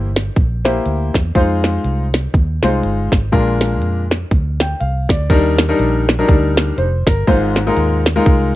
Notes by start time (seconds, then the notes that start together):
Already playing: G1 E3
0.16 snare, closed hi-hat
0.36 A#1, kick, closed hi-hat
0.65 A#3 E4 G4 C5, snare, closed hi-hat
0.86 D2, closed hi-hat
1.14 E2, kick, snare, closed hi-hat
1.35 F2 G#3 D#4 F4 C5, kick, closed hi-hat
1.64 snare, closed hi-hat
1.84 C2, closed hi-hat
2.14 snare, closed hi-hat
2.34 D#2, kick, closed hi-hat
2.63 C2 G#3 D#4 F4 C5, snare, closed hi-hat
2.83 G1, closed hi-hat
3.12 G#1, kick, snare, closed hi-hat
3.32 A#1 A#2 G#3 D4 F4 A#4, kick, closed hi-hat
3.61 snare, closed hi-hat
3.82 F2, closed hi-hat
4.11 snare, closed hi-hat
4.31 D2, kick, closed hi-hat
4.60 G5, snare, closed hi-hat
4.80 C2 F5, closed hi-hat
5.09 D2 D5, kick, snare, closed hi-hat
5.30 D#2 D#3 G3 D4 D#4 A#4, kick, closed hi-hat, crash
5.59 snare, closed hi-hat
5.69 G3 D4 D#4 A#4
5.79 A#1, closed hi-hat
6.09 snare, closed hi-hat
6.19 F#3 D4 D#4 A#4
6.25 D2 G3, kick, closed hi-hat
6.57 snare, closed hi-hat
6.78 F1 C5, closed hi-hat
7.07 G1 A#4, kick, snare, closed hi-hat
7.27 G#1 G#2 G#3 D#4 F4 C5, kick, closed hi-hat
7.56 snare, closed hi-hat
7.67 G#3 D#4 F4 A#4
7.77 D#2, closed hi-hat
8.06 snare, closed hi-hat
8.16 G#3 D#4 F4 A#4
8.26 C2, kick, closed hi-hat